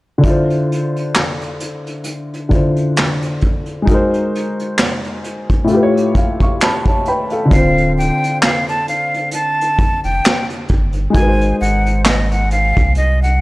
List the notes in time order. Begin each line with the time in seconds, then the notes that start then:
0.18 D3 D4
0.24 E4 F4, kick, closed hi-hat
0.30 C5
0.50 closed hi-hat
0.72 closed hi-hat
0.96 closed hi-hat
1.15 snare, clap, closed hi-hat
1.41 closed hi-hat
1.60 closed hi-hat
1.87 closed hi-hat
2.04 closed hi-hat
2.34 closed hi-hat
2.49 D3 D4 E4, kick, closed hi-hat
2.53 F4 C5
2.76 closed hi-hat
2.96 snare, clap, closed hi-hat
3.22 closed hi-hat
3.41 kick, closed hi-hat
3.66 closed hi-hat
3.82 G#3 D#4
3.87 F#4 A#4, kick, closed hi-hat
3.94 C5
4.14 closed hi-hat
4.36 closed hi-hat
4.59 closed hi-hat
4.78 snare, clap, closed hi-hat
5.05 closed hi-hat
5.24 closed hi-hat
5.50 kick, closed hi-hat
5.64 A2 A3, closed hi-hat
5.70 F4 G4
5.76 B4
5.83 C#5
5.97 closed hi-hat
6.15 F5, kick, closed hi-hat
6.40 F5 C#6, kick, closed hi-hat
6.60 A5 B5, snare, clap, closed hi-hat
6.86 C#5 A5, kick, closed hi-hat
7.05 B4 G5 B5, closed hi-hat
7.30 A4 F5, closed hi-hat
7.45 D3 D4
7.51 D1 C4 F4 F5, kick, closed hi-hat
7.57 C5
7.78 closed hi-hat
7.98 G5, closed hi-hat
8.24 closed hi-hat
8.43 F5, snare, clap, closed hi-hat
8.69 A5, closed hi-hat
8.88 F5, closed hi-hat
9.14 closed hi-hat
9.31 A5, closed hi-hat
9.61 closed hi-hat
9.79 kick, closed hi-hat
10.04 F1 G5, closed hi-hat
10.24 snare, clap, closed hi-hat
10.50 closed hi-hat
10.68 G1, kick, closed hi-hat
10.93 closed hi-hat
11.10 G#3 D#4
11.15 G#1 F#4 G#5, kick, closed hi-hat
11.19 A#4 B4
11.28 C5
11.41 closed hi-hat
11.61 G#1 F#5, closed hi-hat
11.86 closed hi-hat
12.05 D#5, snare, clap, closed hi-hat
12.31 F#5, closed hi-hat
12.51 F5, closed hi-hat
12.77 C2, kick, closed hi-hat
12.95 D#5, closed hi-hat
13.23 F#5, closed hi-hat